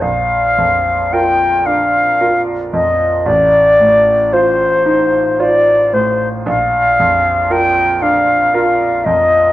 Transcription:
X:1
M:3/4
L:1/8
Q:1/4=56
K:Bb
V:1 name="Flute"
f2 g f2 e | d2 c2 d c | f2 g f2 e |]
V:2 name="Grand piano"
B,,, F,, [FB] D [FB] F,, | A,,, A,, [Fc] E [Fc] A,, | B,,, F,, [FB] D [FB] F,, |]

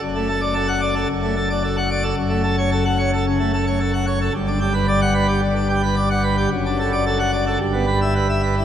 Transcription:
X:1
M:4/4
L:1/16
Q:1/4=111
K:Dlyd
V:1 name="Pipe organ"
F,, A, A d A f d A F,, A, A d A f d A | [K:Glyd] F,, A, A c A f c A C, A, A c A f c A | G,, D G B d f B G D, D G B d f B G | F,, D A d A f d A G,, B, B e B e B E |]
V:2 name="Pipe organ" clef=bass
F,,,8 F,,,8 | [K:Glyd] F,,,16 | G,,,16 | F,,,8 G,,,8 |]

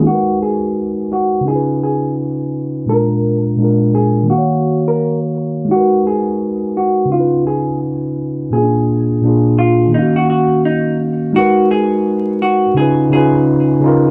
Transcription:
X:1
M:4/4
L:1/16
Q:"Swing 16ths" 1/4=85
K:G#dor
V:1 name="Hollow-body jazz guitar"
F2 G4 F2 G2 G2 z4 | A6 G2 F3 A2 z3 | F2 G4 F2 E2 G2 z4 | G6 E2 D F F2 D2 z2 |
F2 G4 F2 G2 G2 z4 |]
V:2 name="Tine electric piano"
[G,DAB]8 [C,CDEB]8 | [A,,G,=DEA]4 [A,,G,DEA]4 [^D,A,Fce]8 | [G,DFAB]8 [C,CD=E^EB]8 | [A,,A,C=DEG]4 [A,,A,DEG]4 [^D,A,CFe]8 |
[G,DFAB]8 [C,CDEB]2 [C,CDEB]4 [C,CDEA]2 |]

